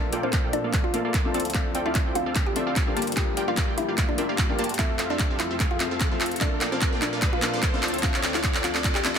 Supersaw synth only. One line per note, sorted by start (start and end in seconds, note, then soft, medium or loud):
0.00 0.11 A#3 medium
0.00 0.11 F4 medium
0.00 0.11 A4 medium
0.00 0.11 D5 medium
0.00 0.11 F5 medium
0.13 0.21 A#3 loud
0.13 0.21 F4 medium
0.13 0.21 A4 medium
0.13 0.21 D5 medium
0.13 0.21 G5 loud
0.24 0.41 A#3 medium
0.24 0.41 F4 medium
0.24 0.41 A4 medium
0.24 0.41 D5 medium
0.24 0.41 F5 loud
0.44 0.62 A#3 medium
0.44 0.62 F4 medium
0.44 0.62 A4 medium
0.44 0.62 D5 medium
0.44 0.62 G5 medium
0.64 0.71 A#3 medium
0.64 0.71 F4 medium
0.64 0.71 A4 medium
0.64 0.71 D5 medium
0.64 0.71 F5 medium
0.74 0.92 A#3 medium
0.74 0.92 F4 medium
0.74 0.92 D5 medium
0.74 0.92 F5 medium
0.94 1.02 A#3 medium
0.94 1.02 F4 medium
0.94 1.02 A4 medium
0.94 1.02 D5 medium
0.94 1.02 F5 medium
1.05 1.22 A#3 medium
1.05 1.22 F4 medium
1.05 1.22 A4 medium
1.05 1.22 D5 medium
1.05 1.22 F5 loud
1.25 1.32 A#3 medium
1.25 1.32 F4 medium
1.25 1.32 A4 medium
1.25 1.32 D5 medium
1.25 1.32 F5 medium
1.34 1.45 C4 medium
1.34 1.45 F4 medium
1.34 1.46 A4 medium
1.34 1.46 D5 medium
1.34 1.46 A5 loud
1.55 1.73 F4 medium
1.55 1.73 F5 medium
1.75 1.83 C4 loud
1.75 1.83 F4 medium
1.75 1.83 A4 medium
1.75 1.83 D5 medium
1.75 1.83 G5 loud
1.86 2.03 C4 medium
1.86 2.03 F4 medium
1.86 2.03 A4 medium
1.86 2.03 D5 medium
1.86 2.03 F5 loud
2.06 2.24 C4 medium
2.06 2.24 F4 medium
2.06 2.24 A4 medium
2.06 2.24 D5 medium
2.06 2.24 G5 medium
2.26 2.33 C4 medium
2.26 2.33 F4 medium
2.26 2.33 A4 medium
2.26 2.33 D5 medium
2.26 2.33 F5 medium
2.36 2.54 C4 medium
2.36 2.54 F4 medium
2.36 2.54 A4 medium
2.36 2.54 D5 medium
2.36 2.54 F5 loud
2.56 2.64 C4 medium
2.56 2.64 F4 medium
2.56 2.64 A4 medium
2.56 2.64 D5 medium
2.56 2.64 E5 medium
2.67 2.84 C4 medium
2.67 2.84 F4 medium
2.67 2.84 A4 medium
2.67 2.84 D5 medium
2.67 2.84 F5 medium
2.87 2.94 C4 medium
2.87 2.94 F4 medium
2.87 2.94 A4 medium
2.87 2.94 D5 medium
2.87 2.94 F5 medium
2.96 3.08 A#3 medium
2.96 3.08 F4 medium
2.96 3.08 G4 medium
2.96 3.08 D5 medium
2.96 3.08 A5 loud
3.17 3.35 A#3 medium
3.37 3.45 A#3 loud
3.37 3.45 F4 medium
3.37 3.45 G4 medium
3.37 3.45 D5 medium
3.37 3.45 G5 loud
3.48 3.65 A#3 medium
3.48 3.65 F4 medium
3.48 3.65 G4 medium
3.48 3.65 D5 medium
3.48 3.65 F5 loud
3.68 3.86 A#3 medium
3.68 3.86 F4 medium
3.68 3.86 G4 medium
3.68 3.86 D5 medium
3.68 3.86 G5 medium
3.88 3.96 A#3 medium
3.88 3.96 F4 medium
3.88 3.96 G4 medium
3.88 3.96 D5 medium
3.88 3.96 F5 medium
3.98 4.16 A#3 medium
3.98 4.16 F4 medium
3.98 4.16 D5 medium
3.98 4.16 F5 medium
4.18 4.26 A#3 medium
4.18 4.26 F4 medium
4.18 4.26 G4 medium
4.18 4.26 D5 medium
4.18 4.26 E5 medium
4.29 4.47 A#3 medium
4.29 4.47 F4 medium
4.29 4.47 G4 medium
4.29 4.47 D5 medium
4.29 4.47 F5 loud
4.49 4.57 A#3 medium
4.49 4.56 F4 medium
4.49 4.56 G4 medium
4.49 4.57 D5 medium
4.49 4.56 F5 medium
4.59 4.70 A#3 medium
4.59 4.70 F4 medium
4.59 4.70 G4 medium
4.59 4.70 D5 medium
4.59 4.70 A5 loud
4.79 4.97 C4 medium
4.79 4.97 A4 medium
4.79 4.97 E5 medium
4.99 5.07 C4 medium
4.99 5.07 F4 medium
4.99 5.07 A4 medium
4.99 5.07 E5 medium
4.99 5.07 F5 loud
5.10 5.28 C4 loud
5.10 5.28 F4 medium
5.10 5.28 A4 medium
5.10 5.28 E5 medium
5.10 5.28 F5 loud
5.30 5.48 C4 medium
5.30 5.48 F4 medium
5.30 5.48 A4 medium
5.30 5.48 E5 medium
5.30 5.48 F5 medium
5.51 5.58 C4 medium
5.51 5.58 F4 medium
5.51 5.58 A4 medium
5.51 5.58 E5 medium
5.51 5.58 F5 medium
5.81 5.89 C4 medium
5.81 5.89 F4 medium
5.81 5.89 A4 medium
5.81 5.89 E5 medium
5.81 5.89 F5 medium
5.91 6.09 C4 medium
5.91 6.09 F4 medium
5.91 6.09 A4 medium
5.91 6.09 E5 medium
5.91 6.09 F5 loud
6.11 6.19 C4 medium
6.11 6.19 F4 medium
6.11 6.19 A4 medium
6.11 6.19 E5 medium
6.11 6.19 F5 medium
6.21 6.32 C4 medium
6.21 6.32 F4 medium
6.21 6.32 A4 medium
6.21 6.32 E5 medium
6.21 6.32 F5 loud
6.41 6.59 A#3 medium
6.41 6.59 F4 medium
6.41 6.59 D5 medium
6.41 6.59 F5 medium
6.61 6.70 A#3 loud
6.61 6.70 F4 medium
6.61 6.70 A4 medium
6.61 6.70 D5 medium
6.61 6.70 G5 loud
6.72 6.90 A#3 loud
6.72 6.90 F4 medium
6.72 6.90 A4 medium
6.72 6.90 D5 medium
6.72 6.90 F5 loud
6.93 7.10 A#3 medium
6.93 7.10 F4 medium
6.93 7.10 A4 medium
6.93 7.10 D5 medium
6.93 7.10 G5 medium
7.13 7.20 A#3 medium
7.13 7.20 F4 medium
7.13 7.20 A4 medium
7.13 7.20 D5 medium
7.13 7.20 F5 medium
7.22 7.40 F4 medium
7.22 7.40 D5 medium
7.43 7.51 A#3 medium
7.43 7.51 F4 medium
7.43 7.51 A4 medium
7.43 7.51 D5 medium
7.43 7.51 F5 medium
7.53 7.71 A#3 medium
7.53 7.71 F4 medium
7.53 7.71 A4 medium
7.53 7.71 D5 medium
7.53 7.71 F5 loud
7.74 7.81 A#3 medium
7.74 7.81 F4 medium
7.74 7.81 A4 medium
7.74 7.81 D5 medium
7.74 7.81 F5 medium
7.83 7.94 C4 medium
7.83 7.94 F4 medium
7.83 7.94 A4 medium
7.83 7.94 D5 medium
7.83 7.94 A5 loud
8.04 8.21 D5 medium
8.04 8.21 F5 medium
8.24 8.32 C4 loud
8.24 8.32 F4 medium
8.24 8.32 A4 medium
8.24 8.32 D5 medium
8.24 8.32 G5 loud
8.34 8.52 C4 loud
8.34 8.52 F4 medium
8.34 8.52 A4 medium
8.34 8.52 D5 medium
8.34 8.52 F5 loud
8.54 8.72 C4 medium
8.54 8.72 F4 medium
8.54 8.72 A4 medium
8.54 8.72 D5 medium
8.54 8.72 G5 medium
8.75 8.82 C4 medium
8.75 8.82 F4 medium
8.75 8.82 A4 medium
8.75 8.82 D5 medium
8.75 8.82 F5 medium
8.84 9.02 C4 medium
8.84 9.02 F4 medium
8.84 9.02 A4 medium
8.84 9.02 F5 medium
9.05 9.13 C4 medium
9.05 9.13 F4 medium
9.05 9.13 A4 medium
9.05 9.13 D5 medium
9.05 9.13 E5 medium
9.15 9.19 C4 medium
9.15 9.19 F4 medium
9.15 9.19 A4 medium
9.15 9.19 D5 medium
9.15 9.19 F5 loud